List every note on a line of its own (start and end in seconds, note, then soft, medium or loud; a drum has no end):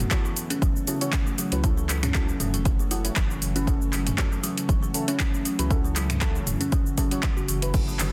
0.00 8.12 C#3 medium
0.00 8.12 F#3 medium
0.00 8.12 A3 medium
0.00 7.73 C#4 medium
0.11 0.23 E3 medium
0.11 0.85 C#4 loud
0.11 0.85 E4 medium
0.11 0.85 F#4 medium
0.11 0.85 A4 loud
0.11 finger snap loud
0.11 kick loud
0.11 clap loud
0.11 closed hi-hat soft
0.11 shaker medium
0.25 0.36 E3 medium
0.25 shaker soft
0.36 open hi-hat medium
0.36 shaker medium
0.50 0.61 C#4 loud
0.50 closed hi-hat medium
0.50 shaker soft
0.62 0.71 F#1 loud
0.62 0.69 F#3 medium
0.62 kick loud
0.62 closed hi-hat soft
0.62 shaker medium
0.76 shaker soft
0.87 1.00 F#3 medium
0.87 0.99 C#4 medium
0.87 0.99 E4 medium
0.87 0.99 F#4 medium
0.87 0.99 A4 medium
0.87 open hi-hat medium
0.87 shaker medium
1.01 1.08 E3 medium
1.01 1.13 C#4 medium
1.01 1.13 E4 medium
1.01 1.13 F#4 medium
1.01 1.13 C#5 loud
1.01 closed hi-hat medium
1.01 shaker soft
1.13 finger snap loud
1.13 kick loud
1.13 clap loud
1.13 closed hi-hat soft
1.13 shaker medium
1.27 1.37 F#3 medium
1.27 shaker soft
1.38 1.51 F#3 loud
1.38 open hi-hat medium
1.38 shaker medium
1.52 2.34 C#2 medium
1.52 1.62 C#4 medium
1.52 1.62 E4 medium
1.52 1.62 F#4 medium
1.52 1.62 B4 medium
1.52 closed hi-hat medium
1.52 shaker soft
1.64 1.76 E3 medium
1.64 2.12 C#4 medium
1.64 2.12 E4 medium
1.64 2.12 F#4 medium
1.64 2.12 A4 medium
1.64 kick loud
1.64 closed hi-hat soft
1.64 shaker soft
1.77 1.88 E3 medium
1.77 shaker soft
1.89 clap medium
1.89 open hi-hat medium
1.89 shaker medium
2.03 2.13 C#4 loud
2.03 finger snap medium
2.03 closed hi-hat medium
2.03 mid tom medium
2.03 shaker soft
2.15 2.22 F#3 medium
2.15 2.89 C#4 loud
2.15 2.89 E4 medium
2.15 2.89 F#4 medium
2.15 2.89 A4 loud
2.15 finger snap loud
2.15 kick loud
2.15 clap loud
2.15 closed hi-hat soft
2.15 shaker medium
2.29 shaker soft
2.40 2.67 E1 medium
2.40 2.53 F#3 medium
2.40 mid tom medium
2.40 open hi-hat medium
2.40 shaker medium
2.54 2.60 E3 medium
2.54 closed hi-hat medium
2.54 shaker soft
2.65 3.10 F#1 loud
2.65 kick loud
2.65 closed hi-hat soft
2.65 shaker medium
2.79 2.90 F#3 medium
2.79 shaker soft
2.91 3.04 F#3 loud
2.91 3.03 C#4 medium
2.91 3.03 E4 medium
2.91 3.03 F#4 medium
2.91 3.03 A4 medium
2.91 open hi-hat medium
2.91 shaker medium
3.04 3.17 C#4 medium
3.04 3.17 E4 medium
3.04 3.17 F#4 medium
3.04 3.17 C#5 loud
3.04 closed hi-hat medium
3.04 shaker soft
3.16 4.12 F#1 loud
3.16 3.29 E3 medium
3.16 finger snap loud
3.16 kick loud
3.16 clap loud
3.16 closed hi-hat soft
3.16 shaker medium
3.30 3.41 E3 medium
3.30 shaker soft
3.42 open hi-hat medium
3.42 shaker medium
3.55 3.65 C#4 medium
3.55 3.66 C#4 loud
3.55 3.65 E4 medium
3.55 3.65 F#4 medium
3.55 3.65 B4 medium
3.55 closed hi-hat medium
3.55 shaker soft
3.67 3.75 F#3 medium
3.67 4.15 C#4 medium
3.67 4.15 E4 medium
3.67 4.15 F#4 medium
3.67 4.15 A4 medium
3.67 kick loud
3.67 closed hi-hat soft
3.67 shaker soft
3.82 shaker soft
3.93 4.05 F#3 medium
3.93 clap medium
3.93 open hi-hat medium
3.93 shaker medium
4.07 4.13 E3 medium
4.07 closed hi-hat medium
4.07 mid tom medium
4.07 shaker soft
4.18 4.92 C#4 medium
4.18 4.92 E4 medium
4.18 4.92 F#4 medium
4.18 4.92 A4 loud
4.18 finger snap loud
4.18 kick loud
4.18 clap loud
4.18 closed hi-hat soft
4.18 shaker medium
4.32 4.42 F#3 medium
4.32 shaker soft
4.44 4.57 F#3 loud
4.44 open hi-hat medium
4.44 shaker medium
4.58 closed hi-hat medium
4.58 shaker soft
4.69 4.78 F#1 loud
4.69 4.81 E3 medium
4.69 kick loud
4.69 closed hi-hat soft
4.69 shaker soft
4.83 4.93 E3 medium
4.83 shaker soft
4.94 5.06 C#4 medium
4.94 5.06 E4 medium
4.94 5.06 F#4 medium
4.94 5.06 A4 medium
4.94 open hi-hat medium
4.94 shaker medium
5.08 5.20 C#4 medium
5.08 5.19 C#4 loud
5.08 5.20 E4 medium
5.08 5.20 F#4 medium
5.08 5.20 C#5 medium
5.08 closed hi-hat medium
5.08 shaker soft
5.20 5.27 F#3 medium
5.20 finger snap loud
5.20 kick loud
5.20 clap loud
5.20 closed hi-hat soft
5.20 shaker medium
5.34 shaker soft
5.45 5.58 F#3 medium
5.45 open hi-hat medium
5.45 shaker medium
5.59 6.41 C#2 medium
5.59 5.65 E3 medium
5.59 5.69 C#4 medium
5.59 5.69 E4 medium
5.59 5.69 F#4 medium
5.59 5.69 B4 medium
5.59 closed hi-hat medium
5.59 shaker soft
5.70 6.19 C#4 medium
5.70 6.19 E4 medium
5.70 6.19 F#4 medium
5.70 6.19 A4 medium
5.70 kick loud
5.70 closed hi-hat soft
5.70 shaker soft
5.84 5.95 F#3 medium
5.84 shaker soft
5.96 6.09 F#3 loud
5.96 clap medium
5.96 open hi-hat medium
5.96 shaker medium
6.10 finger snap medium
6.10 closed hi-hat medium
6.10 mid tom medium
6.10 shaker soft
6.21 6.34 E3 medium
6.21 6.95 C#4 loud
6.21 6.95 E4 medium
6.21 6.95 F#4 medium
6.21 6.95 A4 loud
6.21 finger snap loud
6.21 kick loud
6.21 clap loud
6.21 closed hi-hat soft
6.21 shaker medium
6.35 6.46 E3 medium
6.35 shaker soft
6.47 6.56 E1 medium
6.47 mid tom medium
6.47 open hi-hat medium
6.47 shaker medium
6.61 6.71 C#4 loud
6.61 closed hi-hat medium
6.61 shaker soft
6.72 6.80 F#3 medium
6.72 kick loud
6.72 closed hi-hat soft
6.72 shaker medium
6.86 shaker soft
6.98 7.10 F#3 loud
6.98 7.09 C#4 medium
6.98 7.09 E4 medium
6.98 7.09 F#4 medium
6.98 7.09 A4 medium
6.98 kick medium
6.98 open hi-hat medium
6.98 shaker medium
7.11 7.23 F#3 medium
7.11 7.23 C#4 medium
7.11 7.23 E4 medium
7.11 7.23 F#4 medium
7.11 7.24 C#5 loud
7.11 closed hi-hat medium
7.11 shaker soft
7.23 finger snap loud
7.23 kick loud
7.23 clap loud
7.23 closed hi-hat soft
7.23 shaker soft
7.37 7.48 F#4 medium
7.37 shaker soft
7.48 8.12 F#1 medium
7.48 7.62 E3 medium
7.48 open hi-hat medium
7.48 shaker medium
7.62 7.72 C#4 medium
7.62 7.72 E4 medium
7.62 7.72 F#4 medium
7.62 7.72 B4 medium
7.62 closed hi-hat medium
7.62 shaker soft
7.74 8.12 C#4 medium
7.74 8.12 E4 medium
7.74 8.12 F#4 medium
7.74 8.12 A4 medium
7.74 kick loud
7.74 closed hi-hat soft
7.74 crash medium
7.74 shaker medium
7.88 7.98 F#3 medium
7.88 shaker soft
7.99 8.12 F#3 loud
7.99 clap soft
7.99 open hi-hat medium
7.99 low conga medium
7.99 shaker medium